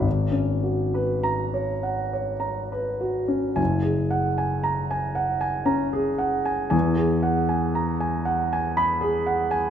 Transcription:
0.00 3.53 G#1 soft
0.31 0.82 C#4 soft
0.64 1.13 F#4 soft
0.94 1.43 B4 soft
1.23 1.72 A#5 soft
1.54 2.02 C#5 soft
1.83 2.31 F#5 soft
2.13 2.60 C#5 soft
2.40 2.89 A#5 soft
2.72 3.20 B4 soft
3.01 3.48 F#4 soft
3.28 3.58 C#4 soft
3.56 6.68 F#1 soft
3.56 4.01 G#5 soft
3.82 4.27 G#4 soft
4.11 4.55 F#5 soft
4.38 4.82 G#5 soft
4.63 4.92 A#5 soft
4.91 5.34 G#5 soft
5.15 5.58 F#5 soft
5.41 5.84 G#5 soft
5.66 6.09 C#4 soft
5.66 6.09 A#5 soft
5.93 6.36 G#4 soft
6.18 6.62 F#5 soft
6.45 6.69 G#5 soft
6.70 9.70 E2 medium
6.70 7.13 G#5 soft
6.96 7.39 G#4 soft
7.23 7.65 F#5 soft
7.49 7.91 G#5 soft
7.75 8.02 A#5 soft
8.00 8.42 G#5 soft
8.25 8.66 F#5 soft
8.53 8.92 G#5 medium
8.77 9.16 B5 medium
9.01 9.40 G#4 soft
9.26 9.66 F#5 soft
9.51 9.70 G#5 soft

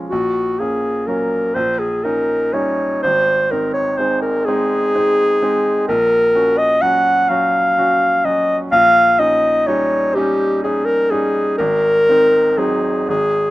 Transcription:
0.00 0.13 F3 soft
0.00 0.13 G#3 soft
0.00 0.13 C#4 medium
0.10 0.59 A#1 medium
0.10 0.61 F#4 medium
0.59 1.04 A#3 soft
0.59 1.04 C#4 soft
0.59 1.09 G#4 medium
1.07 1.51 F#3 soft
1.07 1.51 A#3 soft
1.07 1.52 C#4 soft
1.07 1.56 A#4 medium
1.55 2.02 A#1 medium
1.55 1.81 C5 medium
1.79 2.05 G#4 medium
2.04 2.49 C#4 soft
2.04 2.49 D#4 soft
2.04 2.55 A#4 medium
2.53 2.98 G3 soft
2.53 2.99 C#4 soft
2.53 2.99 D#4 soft
2.53 3.02 C#5 medium
3.03 3.50 G#1 medium
3.03 3.53 C5 loud
3.51 3.95 C4 soft
3.51 3.95 D#4 soft
3.51 3.73 A#4 medium
3.74 3.99 C#5 medium
3.98 4.43 G#3 soft
3.98 4.43 C4 soft
3.98 4.43 D#4 soft
3.98 4.21 C5 medium
4.22 4.47 A#4 medium
4.46 4.91 G#3 medium
4.46 4.91 C4 medium
4.46 4.91 D#4 medium
4.46 5.87 G#4 loud
4.95 5.38 C4 soft
4.95 5.38 D#4 medium
5.42 5.84 G#3 soft
5.42 5.84 C4 soft
5.42 5.85 D#4 medium
5.88 6.33 A#1 medium
5.88 6.59 A#4 loud
6.35 6.78 C#4 soft
6.35 6.78 F#4 soft
6.58 6.83 D#5 loud
6.82 7.26 F#3 soft
6.82 7.26 C#4 soft
6.82 7.26 F#4 medium
6.82 7.31 F#5 loud
7.29 7.73 F#3 soft
7.29 7.73 C#4 soft
7.29 7.73 F#4 medium
7.29 8.27 F5 loud
7.78 8.21 C#4 soft
7.78 8.21 F#4 medium
8.25 8.68 F#3 soft
8.25 8.68 C#4 soft
8.25 8.69 F#4 medium
8.25 8.58 D#5 loud
8.72 9.18 A#1 medium
8.72 9.21 F5 loud
9.19 9.63 C#4 soft
9.19 9.63 D#4 medium
9.19 9.69 D#5 loud
9.67 10.12 G3 soft
9.67 10.12 C#4 soft
9.67 10.12 D#4 medium
9.67 10.16 C#5 loud
10.15 10.60 G3 medium
10.15 10.60 C#4 medium
10.15 10.60 D#4 medium
10.15 10.63 G4 loud
10.63 11.07 C#4 medium
10.63 11.07 D#4 soft
10.63 10.87 G#4 medium
10.85 11.12 A#4 loud
11.11 11.55 G3 soft
11.11 11.55 C#4 soft
11.11 11.55 D#4 medium
11.11 11.57 G#4 loud
11.58 12.07 G#1 medium
11.58 12.59 A#4 loud
12.09 12.54 C4 soft
12.09 12.55 D#4 medium
12.58 13.05 F#3 soft
12.58 13.05 C4 soft
12.58 13.05 D#4 soft
12.58 13.09 G#4 medium
13.08 13.51 G#1 medium
13.08 13.51 G#4 loud

